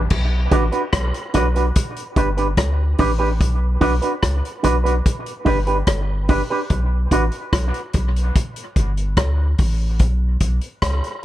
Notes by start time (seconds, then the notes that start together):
0.10 B1, kick, crash
0.51 A1 D4 F#4 B4, kick, closed hi-hat
0.72 D4 F#4 B4, closed hi-hat
0.93 B1, kick, cross-stick, closed hi-hat
1.14 closed hi-hat
1.34 B1 D4 F#4 B4, kick, cross-stick, closed hi-hat
1.55 D4 F#4 B4, closed hi-hat
1.75 kick, closed hi-hat
1.96 closed hi-hat
2.16 G1 D4 G4 B4, kick, closed hi-hat
2.37 D4 G4 B4, closed hi-hat
2.57 D2, kick, cross-stick, closed hi-hat
2.98 A1 D4 G4 B4, kick, open hi-hat
3.19 D4 G4 B4
3.40 B1, kick, closed hi-hat
3.81 B1 D4 F#4 B4, kick, open hi-hat
4.02 D4 F#4 B4, closed hi-hat
4.23 C#2, kick, cross-stick, closed hi-hat
4.45 closed hi-hat
4.63 B1 D4 F#4 B4, kick, closed hi-hat
4.84 D4 F#4 B4, closed hi-hat
5.06 kick, closed hi-hat
5.26 closed hi-hat
5.45 G1 D4 G4 B4, kick, open hi-hat
5.67 D4 G4 B4, closed hi-hat
5.87 G1, kick, cross-stick, closed hi-hat
6.28 D4 G4 B4, kick, open hi-hat
6.50 D4 G4 B4
6.70 B1, kick, closed hi-hat
7.11 A1 D4 F#4 B4, kick, closed hi-hat
7.32 closed hi-hat
7.53 B1, kick, cross-stick, closed hi-hat
7.74 closed hi-hat
7.93 B1, kick, closed hi-hat
8.16 closed hi-hat
8.35 kick, closed hi-hat
8.56 closed hi-hat
8.76 G1, kick, closed hi-hat
8.97 closed hi-hat
9.17 D2, kick, cross-stick, closed hi-hat
9.58 A1, kick, open hi-hat
9.99 B1, kick, closed hi-hat
10.40 B1, kick, closed hi-hat
10.61 closed hi-hat
10.82 C#2, kick, cross-stick, closed hi-hat
11.04 closed hi-hat